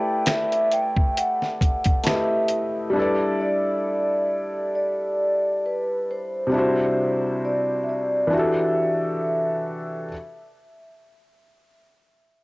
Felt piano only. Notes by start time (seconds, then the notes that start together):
Already playing: A3 E4 G4 B4 D5
2.04 A3 E4 G4
2.08 B4 D#5
2.16 E5
2.90 G3 D4
2.96 E4 A4
3.02 D5
6.47 C3 G3
6.52 D4 E4
6.56 F#4 C5
8.27 E3 D4
8.33 F#4 G4
8.39 A4